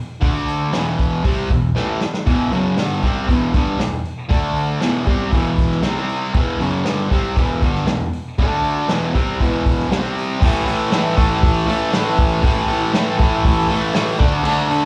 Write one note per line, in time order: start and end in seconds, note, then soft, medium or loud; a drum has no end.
0.21 0.72 D3 loud
0.21 0.72 A3 loud
0.21 0.73 D4 loud
0.21 kick loud
0.21 open hi-hat medium
0.48 open hi-hat medium
0.73 1.23 E2 medium
0.73 1.23 B2 loud
0.73 1.24 E3 loud
0.73 snare loud
0.73 open hi-hat medium
0.99 kick medium
0.99 open hi-hat medium
1.24 1.49 C3 medium
1.24 1.49 G3 loud
1.24 1.50 C4 loud
1.24 kick medium
1.24 open hi-hat medium
1.50 1.70 E2 medium
1.50 1.71 B2 medium
1.50 kick medium
1.50 open hi-hat medium
1.75 2.00 A2 medium
1.75 2.00 E3 medium
1.75 2.01 A3 loud
1.75 snare medium
2.01 muted distorted electric guitar stroke medium
2.01 snare medium
2.14 snare medium
2.26 2.51 E2 loud
2.26 2.51 B2 medium
2.26 2.52 E3 loud
2.26 kick loud
2.26 open hi-hat medium
2.52 2.77 F#2 loud
2.52 2.77 C#3 medium
2.52 2.77 F#3 loud
2.52 open hi-hat medium
2.77 3.03 G2 loud
2.77 3.03 D3 medium
2.77 3.03 G3 loud
2.77 snare loud
2.77 open hi-hat medium
3.03 3.28 C3 loud
3.03 3.29 G3 loud
3.03 3.29 C4 loud
3.03 kick medium
3.03 open hi-hat medium
3.28 3.53 E2 medium
3.28 3.53 B2 medium
3.28 3.54 E3 medium
3.28 kick medium
3.28 open hi-hat medium
3.54 3.79 G2 loud
3.54 3.79 D3 loud
3.54 3.79 G3 loud
3.54 kick medium
3.54 open hi-hat medium
3.79 4.00 E2 medium
3.79 4.00 B2 medium
3.79 snare loud
3.79 open hi-hat medium
4.05 open hi-hat medium
4.29 4.81 D3 loud
4.29 4.81 A3 medium
4.29 4.81 D4 loud
4.29 kick loud
4.29 open hi-hat medium
4.56 open hi-hat medium
4.81 5.06 E2 medium
4.81 5.06 B2 loud
4.81 5.07 E3 loud
4.81 snare loud
4.81 open hi-hat medium
5.06 5.32 C3 loud
5.06 5.32 G3 loud
5.06 5.32 C4 loud
5.06 kick medium
5.06 open hi-hat medium
5.31 5.82 E2 medium
5.31 5.82 B2 loud
5.31 5.83 E3 medium
5.31 kick medium
5.31 open hi-hat medium
5.58 kick medium
5.58 open hi-hat medium
5.71 snare soft
5.82 6.33 C3 medium
5.82 6.34 G3 medium
5.82 6.34 C4 loud
5.82 snare loud
5.82 open hi-hat medium
6.09 open hi-hat medium
6.34 6.59 E2 loud
6.34 6.59 B2 medium
6.34 6.60 E3 loud
6.34 kick loud
6.34 open hi-hat medium
6.60 6.84 F#2 medium
6.60 6.85 C#3 loud
6.60 6.85 F#3 loud
6.60 open hi-hat medium
6.84 7.10 G2 medium
6.84 7.10 D3 medium
6.84 7.10 G3 loud
6.84 snare loud
6.84 open hi-hat medium
7.10 7.35 C3 loud
7.10 7.36 G3 loud
7.10 7.36 C4 loud
7.10 kick medium
7.10 open hi-hat medium
7.36 7.61 E2 loud
7.36 7.61 B2 medium
7.36 7.62 E3 loud
7.36 kick medium
7.36 open hi-hat medium
7.62 7.87 G2 loud
7.62 7.87 D3 loud
7.62 7.87 G3 loud
7.62 kick medium
7.62 open hi-hat medium
7.75 snare soft
7.87 8.08 E2 medium
7.87 8.08 B2 medium
7.87 snare loud
7.87 open hi-hat medium
8.13 open hi-hat medium
8.38 8.88 D3 loud
8.38 8.89 A3 loud
8.38 8.89 D4 loud
8.38 kick loud
8.38 open hi-hat medium
8.64 open hi-hat medium
8.88 9.14 E2 loud
8.88 9.13 B2 loud
8.88 9.14 E3 loud
8.88 snare loud
8.88 open hi-hat medium
9.13 9.39 C3 medium
9.13 9.39 G3 loud
9.13 9.40 C4 loud
9.13 kick medium
9.13 open hi-hat medium
9.40 9.90 E2 medium
9.40 9.91 B2 loud
9.40 9.91 E3 loud
9.40 kick medium
9.40 open hi-hat medium
9.66 kick loud
9.66 open hi-hat medium
9.79 snare soft
9.91 10.40 C3 medium
9.91 10.41 G3 medium
9.91 10.42 C4 medium
9.91 snare loud
9.91 open hi-hat medium
10.18 open hi-hat medium
10.40 10.91 A2 loud
10.40 10.69 E3 loud
10.40 10.65 A3 loud
10.40 kick loud
10.40 crash loud
10.66 10.93 E3 medium
10.66 10.94 A3 medium
10.66 open hi-hat medium
10.91 11.43 A2 loud
10.91 11.19 E3 loud
10.91 11.16 A3 loud
10.91 snare loud
10.91 open hi-hat medium
11.17 11.70 E3 medium
11.17 11.67 A3 medium
11.17 kick medium
11.17 open hi-hat medium
11.43 kick loud
11.43 open hi-hat medium
11.67 11.93 E3 medium
11.67 11.96 A3 medium
11.67 open hi-hat medium
11.92 12.41 A2 medium
11.92 12.43 E3 medium
11.92 12.45 A3 medium
11.92 snare loud
11.92 open hi-hat medium
12.19 kick loud
12.19 open hi-hat medium
12.42 12.92 A2 loud
12.42 12.70 E3 loud
12.42 12.68 A3 loud
12.42 kick loud
12.42 open hi-hat medium
12.68 12.94 E3 medium
12.68 12.96 A3 medium
12.68 open hi-hat medium
12.93 13.45 A2 loud
12.93 13.21 E3 loud
12.93 13.19 A3 loud
12.93 snare loud
12.93 open hi-hat medium
13.19 13.71 E3 medium
13.19 13.68 A3 medium
13.19 kick medium
13.19 open hi-hat medium
13.45 kick loud
13.45 open hi-hat medium
13.69 13.94 E3 medium
13.69 13.96 A3 medium
13.69 open hi-hat medium
13.94 14.18 A2 medium
13.94 14.19 E3 medium
13.94 14.19 A3 medium
13.94 snare loud
13.94 open hi-hat medium
14.19 14.44 D3 medium
14.19 14.46 A3 medium
14.19 14.47 D4 medium
14.19 kick loud
14.19 open hi-hat medium
14.44 14.85 D3 loud
14.44 14.72 A3 loud
14.44 14.69 D4 loud
14.44 crash loud
14.69 14.85 A3 medium
14.69 14.85 D4 medium
14.69 open hi-hat medium